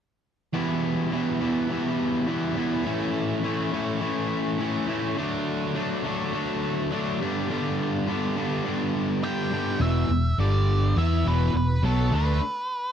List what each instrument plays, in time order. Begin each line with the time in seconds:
0.53 distorted electric guitar E2 B2, overdriven electric guitar E3 G3 B3 E4
1.11 distorted electric guitar E2 B2, overdriven electric guitar E3 G3 B3 E4
1.40 distorted electric guitar E2 B2, overdriven electric guitar E3 G3 B3 E4
1.69 distorted electric guitar E2 B2, overdriven electric guitar E3 G3 B3 E4
2.27 distorted electric guitar E2 B2, overdriven electric guitar E3 G3 B3 E4
2.56 distorted electric guitar E2 B2, overdriven electric guitar E3 G3 B3 E4
2.85 overdriven electric guitar A2 E3 A3 C#4 E4
3.43 overdriven electric guitar A2 E3 A3 C#4 E4
3.71 overdriven electric guitar A2 E3 A3 C#4 E4
4.00 overdriven electric guitar A2 E3 A3 C#4 E4
4.58 overdriven electric guitar A2 E3 A3 C#4 E4
4.87 overdriven electric guitar A2 E3 A3 C#4 E4
5.16 overdriven electric guitar D3 F#3 A3 D4
5.74 overdriven electric guitar D3 F#3 A3 D4
6.04 overdriven electric guitar D3 F#3 A3 D4
6.33 overdriven electric guitar D3 F#3 A3 D4
6.92 overdriven electric guitar D3 F#3 A3 D4
7.20 overdriven electric guitar G2 D3 G3 B3 D4
7.48 overdriven electric guitar G2 D3 G3 B3 D4
8.07 overdriven electric guitar G2 D3 G3 B3 D4
8.36 overdriven electric guitar G2 D3 G3 B3 D4
8.64 overdriven electric guitar G2 D3 G3 B3 D4
9.22 overdriven electric guitar G2 D3 G3 B3 D4, lead electric guitar G5
9.51 overdriven electric guitar G2 D3 G3 B3 D4
9.80 fingered electric bass E1, overdriven electric guitar E2 B2 E3, lead electric guitar E5
10.09 fingered electric bass E1, overdriven electric guitar E2 B2
10.38 fingered electric bass G1, overdriven electric guitar G2 D3 G3, lead electric guitar D5
10.96 fingered electric bass E2, overdriven electric guitar E3 B3 E4, lead electric guitar E5
11.25 fingered electric bass E1, overdriven electric guitar E2 B2 E3, lead electric guitar B4
11.54 fingered electric bass E1, overdriven electric guitar E2 B2, lead electric guitar B4
11.83 fingered electric bass B1, overdriven electric guitar B2 F#3 B3, lead electric guitar A4
12.11 fingered electric bass D2, overdriven electric guitar D3 A3 D4
12.15 lead electric guitar B4